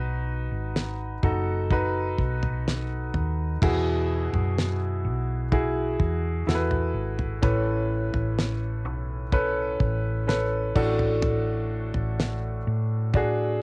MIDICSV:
0, 0, Header, 1, 4, 480
1, 0, Start_track
1, 0, Key_signature, 4, "major"
1, 0, Tempo, 952381
1, 1821, Time_signature, 4, 2, 24, 8
1, 6864, End_track
2, 0, Start_track
2, 0, Title_t, "Grand piano"
2, 0, Program_c, 0, 0
2, 0, Control_c, 0, 64, 127
2, 0, Note_on_c, 0, 63, 89
2, 0, Note_on_c, 0, 66, 79
2, 0, Note_on_c, 0, 71, 102
2, 570, Note_off_c, 0, 63, 0
2, 572, Note_off_c, 0, 66, 0
2, 574, Note_off_c, 0, 71, 0
2, 619, Note_on_c, 0, 63, 69
2, 625, Note_on_c, 0, 66, 70
2, 625, Note_on_c, 0, 69, 80
2, 848, Note_off_c, 0, 63, 0
2, 851, Note_off_c, 0, 66, 0
2, 851, Note_off_c, 0, 69, 0
2, 861, Note_on_c, 0, 63, 82
2, 865, Note_on_c, 0, 66, 69
2, 869, Note_on_c, 0, 71, 88
2, 1773, Note_off_c, 0, 63, 0
2, 1775, Note_off_c, 0, 66, 0
2, 1777, Note_off_c, 0, 71, 0
2, 1826, Note_on_c, 0, 64, 77
2, 1828, Control_c, 0, 64, 0
2, 1828, Note_on_c, 0, 47, 69
2, 1829, Note_on_c, 0, 66, 69
2, 1832, Note_on_c, 0, 68, 81
2, 1919, Control_c, 0, 64, 127
2, 2524, Note_off_c, 0, 47, 0
2, 2735, Note_off_c, 0, 64, 0
2, 2737, Note_off_c, 0, 66, 0
2, 2738, Note_off_c, 0, 68, 0
2, 2781, Note_on_c, 0, 64, 77
2, 2782, Note_on_c, 0, 66, 68
2, 2787, Note_on_c, 0, 68, 84
2, 3237, Note_off_c, 0, 64, 0
2, 3237, Note_off_c, 0, 66, 0
2, 3240, Note_off_c, 0, 68, 0
2, 3260, Note_on_c, 0, 64, 69
2, 3266, Note_on_c, 0, 66, 64
2, 3266, Note_on_c, 0, 69, 65
2, 3296, Note_off_c, 0, 69, 0
2, 3301, Note_on_c, 0, 71, 81
2, 3716, Note_off_c, 0, 64, 0
2, 3719, Note_off_c, 0, 66, 0
2, 3737, Note_off_c, 0, 71, 0
2, 3739, Note_on_c, 0, 61, 70
2, 3740, Note_on_c, 0, 69, 67
2, 3742, Note_on_c, 0, 45, 66
2, 3742, Note_on_c, 0, 52, 64
2, 3746, Note_on_c, 0, 71, 86
2, 3748, Control_c, 0, 64, 0
2, 3827, Control_c, 0, 64, 127
2, 4441, Note_off_c, 0, 45, 0
2, 4441, Note_off_c, 0, 52, 0
2, 4652, Note_off_c, 0, 61, 0
2, 4653, Note_off_c, 0, 69, 0
2, 4655, Note_off_c, 0, 71, 0
2, 4699, Note_on_c, 0, 61, 76
2, 4702, Note_on_c, 0, 69, 74
2, 4704, Note_on_c, 0, 71, 86
2, 5156, Note_off_c, 0, 61, 0
2, 5157, Note_off_c, 0, 69, 0
2, 5159, Note_off_c, 0, 71, 0
2, 5176, Note_on_c, 0, 61, 71
2, 5180, Note_on_c, 0, 69, 69
2, 5183, Note_on_c, 0, 71, 79
2, 5417, Note_off_c, 0, 69, 0
2, 5419, Note_off_c, 0, 61, 0
2, 5421, Note_on_c, 0, 45, 69
2, 5421, Note_on_c, 0, 57, 74
2, 5421, Note_on_c, 0, 62, 90
2, 5422, Note_off_c, 0, 71, 0
2, 5423, Note_on_c, 0, 66, 77
2, 5425, Note_on_c, 0, 69, 93
2, 5427, Control_c, 0, 64, 0
2, 5507, Control_c, 0, 64, 127
2, 6121, Note_off_c, 0, 45, 0
2, 6121, Note_off_c, 0, 57, 0
2, 6333, Note_off_c, 0, 62, 0
2, 6334, Note_off_c, 0, 66, 0
2, 6335, Note_off_c, 0, 69, 0
2, 6627, Note_on_c, 0, 62, 84
2, 6631, Note_on_c, 0, 66, 75
2, 6636, Note_on_c, 0, 68, 87
2, 6864, Note_off_c, 0, 62, 0
2, 6864, Note_off_c, 0, 66, 0
2, 6864, Note_off_c, 0, 68, 0
2, 6864, End_track
3, 0, Start_track
3, 0, Title_t, "Fingered electric bass"
3, 0, Program_c, 1, 33
3, 0, Note_on_c, 1, 35, 95
3, 241, Note_off_c, 1, 35, 0
3, 259, Note_on_c, 1, 32, 76
3, 600, Note_off_c, 1, 32, 0
3, 621, Note_on_c, 1, 30, 83
3, 1081, Note_off_c, 1, 30, 0
3, 1103, Note_on_c, 1, 35, 87
3, 1562, Note_off_c, 1, 35, 0
3, 1582, Note_on_c, 1, 39, 93
3, 1805, Note_off_c, 1, 39, 0
3, 1824, Note_on_c, 1, 40, 96
3, 2162, Note_off_c, 1, 40, 0
3, 2182, Note_on_c, 1, 42, 81
3, 2543, Note_on_c, 1, 35, 85
3, 2551, Note_off_c, 1, 42, 0
3, 3002, Note_off_c, 1, 35, 0
3, 3023, Note_on_c, 1, 40, 89
3, 3245, Note_off_c, 1, 40, 0
3, 3261, Note_on_c, 1, 40, 81
3, 3484, Note_off_c, 1, 40, 0
3, 3497, Note_on_c, 1, 32, 90
3, 3722, Note_off_c, 1, 32, 0
3, 3743, Note_on_c, 1, 33, 97
3, 4082, Note_off_c, 1, 33, 0
3, 4100, Note_on_c, 1, 33, 77
3, 4460, Note_off_c, 1, 33, 0
3, 4460, Note_on_c, 1, 35, 85
3, 4920, Note_off_c, 1, 35, 0
3, 4940, Note_on_c, 1, 33, 92
3, 5400, Note_off_c, 1, 33, 0
3, 5421, Note_on_c, 1, 33, 100
3, 6001, Note_off_c, 1, 33, 0
3, 6026, Note_on_c, 1, 33, 74
3, 6363, Note_off_c, 1, 33, 0
3, 6386, Note_on_c, 1, 45, 83
3, 6843, Note_off_c, 1, 45, 0
3, 6864, End_track
4, 0, Start_track
4, 0, Title_t, "Drums"
4, 383, Note_on_c, 9, 38, 94
4, 434, Note_off_c, 9, 38, 0
4, 621, Note_on_c, 9, 36, 83
4, 621, Note_on_c, 9, 43, 57
4, 671, Note_off_c, 9, 36, 0
4, 671, Note_off_c, 9, 43, 0
4, 860, Note_on_c, 9, 36, 85
4, 862, Note_on_c, 9, 43, 62
4, 910, Note_off_c, 9, 36, 0
4, 912, Note_off_c, 9, 43, 0
4, 1102, Note_on_c, 9, 36, 72
4, 1152, Note_off_c, 9, 36, 0
4, 1224, Note_on_c, 9, 43, 58
4, 1275, Note_off_c, 9, 43, 0
4, 1350, Note_on_c, 9, 38, 99
4, 1400, Note_off_c, 9, 38, 0
4, 1584, Note_on_c, 9, 43, 57
4, 1634, Note_off_c, 9, 43, 0
4, 1824, Note_on_c, 9, 36, 98
4, 1828, Note_on_c, 9, 49, 83
4, 1829, Note_on_c, 9, 43, 110
4, 1875, Note_off_c, 9, 36, 0
4, 1879, Note_off_c, 9, 43, 0
4, 1879, Note_off_c, 9, 49, 0
4, 2186, Note_on_c, 9, 43, 60
4, 2236, Note_off_c, 9, 43, 0
4, 2311, Note_on_c, 9, 38, 103
4, 2361, Note_off_c, 9, 38, 0
4, 2782, Note_on_c, 9, 36, 95
4, 2784, Note_on_c, 9, 43, 67
4, 2833, Note_off_c, 9, 36, 0
4, 2835, Note_off_c, 9, 43, 0
4, 3022, Note_on_c, 9, 36, 76
4, 3072, Note_off_c, 9, 36, 0
4, 3270, Note_on_c, 9, 38, 95
4, 3320, Note_off_c, 9, 38, 0
4, 3381, Note_on_c, 9, 43, 56
4, 3431, Note_off_c, 9, 43, 0
4, 3622, Note_on_c, 9, 43, 57
4, 3673, Note_off_c, 9, 43, 0
4, 3742, Note_on_c, 9, 36, 94
4, 3744, Note_on_c, 9, 43, 110
4, 3793, Note_off_c, 9, 36, 0
4, 3794, Note_off_c, 9, 43, 0
4, 4101, Note_on_c, 9, 43, 61
4, 4151, Note_off_c, 9, 43, 0
4, 4226, Note_on_c, 9, 38, 99
4, 4277, Note_off_c, 9, 38, 0
4, 4699, Note_on_c, 9, 36, 88
4, 4701, Note_on_c, 9, 43, 67
4, 4750, Note_off_c, 9, 36, 0
4, 4751, Note_off_c, 9, 43, 0
4, 4940, Note_on_c, 9, 36, 76
4, 4991, Note_off_c, 9, 36, 0
4, 5187, Note_on_c, 9, 38, 100
4, 5237, Note_off_c, 9, 38, 0
4, 5421, Note_on_c, 9, 36, 99
4, 5421, Note_on_c, 9, 57, 68
4, 5471, Note_off_c, 9, 57, 0
4, 5472, Note_off_c, 9, 36, 0
4, 5540, Note_on_c, 9, 43, 55
4, 5591, Note_off_c, 9, 43, 0
4, 5657, Note_on_c, 9, 43, 98
4, 5707, Note_off_c, 9, 43, 0
4, 6018, Note_on_c, 9, 43, 57
4, 6069, Note_off_c, 9, 43, 0
4, 6147, Note_on_c, 9, 38, 103
4, 6197, Note_off_c, 9, 38, 0
4, 6620, Note_on_c, 9, 43, 64
4, 6622, Note_on_c, 9, 36, 95
4, 6671, Note_off_c, 9, 43, 0
4, 6672, Note_off_c, 9, 36, 0
4, 6864, End_track
0, 0, End_of_file